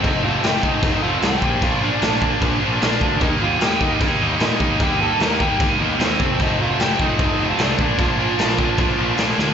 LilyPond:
<<
  \new Staff \with { instrumentName = "Overdriven electric guitar" } { \time 4/4 \key f \mixolydian \tempo 4 = 151 <ees' ees''>8 <f' f''>8 <g' g''>8 <ees' ees''>4 <f' f''>8 <g' g''>4 | <f' f''>8 <d' d''>2 r8 <d' d''>4 | <ees' ees''>8 <f' f''>8 <g' g''>8 <ees' ees''>8 r4 <ees' ees''>4 | <g' g''>8 <a' a''>8 <bes' bes''>8 <g' g''>8 r4 <c' c''>4 |
<ees' ees''>8 <f' f''>8 <g' g''>8 <ees' ees''>4~ <ees' ees''>16 <f' f''>16 <d' d''>4 | <f' f''>2. r4 | }
  \new Staff \with { instrumentName = "Distorted electric guitar" } { \clef bass \time 4/4 \key f \mixolydian <f, c f a c'>8 <f, c f a c'>8 <f, c f a c'>8 <f, c f a c'>8 <f, c f a c'>8 <f, c f a c'>8 <f, c f a c'>8 <bes, f bes d'>8 | <bes, f bes d'>8 <bes, f bes d'>8 <bes, f bes d'>8 <bes, f bes d'>8 <bes, f bes d'>8 <bes, f bes d'>8 <bes, f bes d'>8 <bes, f bes d'>8 | <ees g bes ees'>8 <ees g bes ees'>8 <ees g bes ees'>8 <ees g bes ees'>8 <ees g bes ees'>8 <ees g bes ees'>8 <ees g bes ees'>8 <ees g bes ees'>8 | <ees g bes ees'>8 <ees g bes ees'>8 <ees g bes ees'>8 <ees g bes ees'>8 <ees g bes ees'>8 <ees g bes ees'>8 <ees g bes ees'>8 <f, c f a c'>8 |
<f, c f a c'>8 <f, c f a c'>8 <f, c f a c'>8 <f, c f a c'>8 <f, c f a c'>8 <f, c f a c'>8 <f, c f a c'>8 <bes, f bes d'>8 | <bes, f bes d'>8 <bes, f bes d'>8 <bes, f bes d'>8 <bes, f bes d'>8 <bes, f bes d'>8 <bes, f bes d'>8 <bes, f bes d'>8 <bes, f bes d'>8 | }
  \new Staff \with { instrumentName = "Picked electric bass" } { \clef bass \time 4/4 \key f \mixolydian f,,8 f,,8 f,,8 f,,8 f,,8 f,,8 c,8 bes,,8 | bes,,4 bes,,4 bes,,8 bes,,8 bes,,8 d,8 | ees,8 ees,8 ees,8 ees,8 ees,8 ees,8 bes,8 ees,8 | ees,4 ees,4 ees,8 ees,8 ees,8 f,,8 |
f,,8 f,,8 f,,8 f,,8 f,,8 f,,8 c,8 bes,,8 | bes,,4 bes,,4 bes,,8 bes,,8 bes,,8 d,8 | }
  \new DrumStaff \with { instrumentName = "Drums" } \drummode { \time 4/4 <cymc bd>4 <cymc sn>8 bd8 <cymc bd>4 <cymc sn>8 bd8 | <cymc bd>4 <cymc sn>8 bd8 <cymc bd>4 <cymc sn>8 bd8 | <cymc bd>4 <cymc sn>8 bd8 <cymc bd>4 <cymc sn>8 bd8 | <cymc bd>4 <cymc sn>8 bd8 <cymc bd>4 <cymc sn>8 bd8 |
<cymc bd>4 <cymc sn>8 bd8 <cymc bd>4 <cymc sn>8 bd8 | <cymc bd>4 <cymc sn>8 bd8 <cymc bd>4 <cymc sn>8 sn8 | }
>>